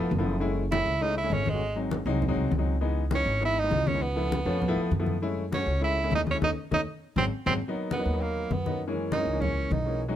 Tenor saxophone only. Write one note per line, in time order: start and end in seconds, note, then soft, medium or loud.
0.00 0.23 B3 medium
0.72 1.04 E4 loud
1.02 1.17 D#4 loud
1.18 1.35 E4 medium
1.33 1.51 C#4 medium
1.50 1.78 G#3 medium
3.15 3.41 C#4 loud
3.45 3.61 E4 loud
3.59 3.89 D#4 loud
3.88 4.04 C#4 medium
4.02 5.07 B3 medium
5.54 5.81 C#4 loud
5.84 6.11 E4 loud
6.15 6.21 D#4 loud
6.31 6.37 C#4 medium
6.44 6.50 D#4 medium
6.74 6.80 D#4 loud
7.18 7.25 C4 loud
7.46 7.54 C4 medium
7.92 8.23 B3 medium
8.22 8.54 A#3 medium
8.53 8.82 B3 medium
9.12 9.43 D#4 medium
9.41 9.74 C#4 medium
9.72 10.02 D#4 medium